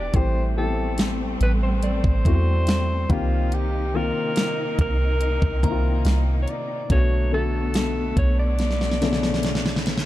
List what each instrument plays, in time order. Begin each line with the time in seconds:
Already playing: 808-style bass E1, string section E3 D4 G4, grand piano E3 B3 D4 F#4 G4, alto saxophone D5
0.13 808-style bass A1, grand piano E3 A3 C4 G4, string section G3 A3 C4, alto saxophone C5, kick, closed hi-hat
0.56 grand piano E3 A3 B3 G4, alto saxophone A4
0.64 grand piano C4
0.98 snare, closed hi-hat
1.41 808-style bass A1, alto saxophone B4, closed hi-hat
1.63 alto saxophone C5
1.83 synth bell D5, closed hi-hat
2.04 808-style bass A1, kick
2.25 808-style bass E2, grand piano E3 A3 C4 F#4, kick, closed hi-hat
2.67 snare, closed hi-hat
3.09 808-style bass C2, string section C3 A#3 D#4, grand piano D#3 A#3 C4 G4, alto saxophone F4, kick, closed hi-hat
3.52 alto saxophone G4, closed hi-hat
3.94 grand piano D#3 A#3 C4 F4, alto saxophone A#4
4.36 snare, closed hi-hat
4.79 808-style bass C2, alto saxophone A#4, kick, closed hi-hat
5.21 closed hi-hat
5.42 808-style bass C2, kick
5.63 808-style bass C2, grand piano D#3 A#3 C4 E4, synth bell A#5, kick, closed hi-hat
5.72 grand piano F4
6.05 808-style bass C2, snare, closed hi-hat
6.42 alto saxophone C#5
6.48 alto saxophone D5, closed hi-hat
6.89 808-style bass B1, string section B2 A3 B3, grand piano D3 A3 B3 F#4, alto saxophone C#5, kick, closed hi-hat
7.32 grand piano D3 A3 B3 F#4, alto saxophone A4
7.74 snare, closed hi-hat
8.17 808-style bass B1, alto saxophone C#5, kick, closed hi-hat
8.39 alto saxophone D5
8.59 snare, closed hi-hat
8.71 snare
8.81 snare
8.92 snare
9.01 grand piano C#3 D3 A3 B3, snare, closed hi-hat
9.13 snare
9.23 snare
9.34 snare
9.43 snare, closed hi-hat
9.55 snare
9.66 snare
9.76 snare
9.86 snare, closed hi-hat, open hi-hat
9.98 snare, closed hi-hat